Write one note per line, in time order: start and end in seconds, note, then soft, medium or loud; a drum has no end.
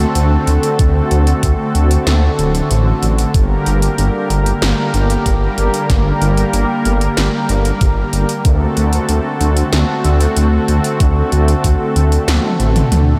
0.00 8.41 D3 medium
0.00 3.30 A3 medium
0.00 3.30 C4 medium
0.00 3.30 F#4 medium
0.00 3.30 A4 loud
0.15 0.38 D2 loud
0.15 closed hi-hat medium
0.47 0.58 D2 medium
0.47 closed hi-hat medium
0.63 closed hi-hat medium
0.79 1.01 D2 loud
0.79 kick loud
0.79 closed hi-hat medium
1.11 1.33 D2 medium
1.11 closed hi-hat medium
1.27 closed hi-hat medium
1.43 1.54 D2 loud
1.43 kick medium
1.43 closed hi-hat medium
1.75 1.97 D2 loud
1.75 closed hi-hat medium
1.91 closed hi-hat medium
2.07 2.29 D2 medium
2.07 snare loud
2.07 closed hi-hat medium
2.39 2.61 D1 medium
2.39 closed hi-hat medium
2.55 closed hi-hat medium
2.71 2.93 A1 loud
2.71 closed hi-hat medium
3.02 3.25 A1 medium
3.02 closed hi-hat medium
3.18 closed hi-hat medium
3.34 3.57 G1 loud
3.34 8.41 G3 medium
3.34 8.41 A#3 medium
3.34 8.41 G4 medium
3.34 8.41 A#4 medium
3.34 kick loud
3.34 closed hi-hat medium
3.66 3.89 G1 medium
3.66 closed hi-hat medium
3.82 closed hi-hat medium
3.98 4.09 G1 loud
3.98 closed hi-hat medium
4.30 4.52 G1 loud
4.30 closed hi-hat medium
4.46 closed hi-hat medium
4.62 4.73 G1 medium
4.62 snare loud
4.62 closed hi-hat medium
4.94 5.16 G1 loud
4.94 closed hi-hat medium
5.10 closed hi-hat medium
5.26 5.48 G1 loud
5.26 kick medium
5.26 closed hi-hat medium
5.58 5.69 G1 medium
5.58 closed hi-hat medium
5.74 closed hi-hat medium
5.90 6.12 G1 loud
5.90 kick loud
5.90 snare medium
5.90 closed hi-hat medium
6.21 6.44 G1 medium
6.21 closed hi-hat medium
6.37 closed hi-hat medium
6.53 6.65 G1 loud
6.53 closed hi-hat medium
6.85 7.08 G1 loud
6.85 closed hi-hat medium
7.01 closed hi-hat medium
7.17 7.28 G1 medium
7.17 snare loud
7.17 closed hi-hat medium
7.49 7.72 G1 loud
7.49 closed hi-hat medium
7.65 closed hi-hat medium
7.81 8.04 G1 loud
7.81 kick loud
7.81 closed hi-hat medium
8.13 8.24 G1 medium
8.13 closed hi-hat medium
8.29 closed hi-hat medium
8.45 8.67 D2 loud
8.45 13.19 D3 medium
8.45 13.19 A3 medium
8.45 13.19 C4 medium
8.45 13.19 F#4 medium
8.45 13.19 A4 medium
8.45 kick loud
8.45 closed hi-hat medium
8.77 8.99 D2 medium
8.77 closed hi-hat medium
8.93 closed hi-hat medium
9.09 9.20 D2 loud
9.09 closed hi-hat medium
9.41 9.63 D2 loud
9.41 closed hi-hat medium
9.57 closed hi-hat medium
9.73 9.84 D2 medium
9.73 snare loud
9.73 closed hi-hat medium
10.04 10.27 D2 loud
10.04 closed hi-hat medium
10.21 closed hi-hat medium
10.37 10.59 D2 loud
10.37 closed hi-hat medium
10.68 10.80 D2 medium
10.68 closed hi-hat medium
10.84 closed hi-hat medium
11.00 11.23 D2 loud
11.00 kick loud
11.00 closed hi-hat medium
11.32 11.55 D2 medium
11.32 closed hi-hat medium
11.48 closed hi-hat medium
11.64 11.75 D2 loud
11.64 kick medium
11.64 closed hi-hat medium
11.96 12.18 D2 loud
11.96 closed hi-hat medium
12.12 closed hi-hat medium
12.28 12.39 D2 medium
12.28 snare loud
12.28 closed hi-hat medium
12.28 high tom medium
12.44 high tom medium
12.60 12.82 A1 medium
12.60 closed hi-hat medium
12.76 closed hi-hat medium
12.76 mid tom medium
12.92 13.14 D2 loud
12.92 closed hi-hat loud
12.92 mid tom medium